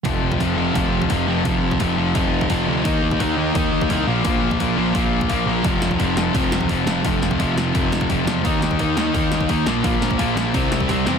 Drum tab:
HH |o---o---o---o---|o---o---o---o---|o---o---o---o---|o---o---o---o---|
SD |----------------|----------------|----------------|----------------|
BD |o--oo---o--oo---|o--oo---o--oo---|o--oo---o--oo---|o--oo---o--oo---|

HH |o---o---o---o---|o---o---o---o---|o---o---o---o---|o---o---o---o---|
SD |--o---o---o---o-|--o---o---o---o-|--o---o---o---o-|--o---o---o-o-o-|
BD |o--oo---o--oo---|o--oo---o--oo---|o--oo---o--oo---|o--oo---o--oo---|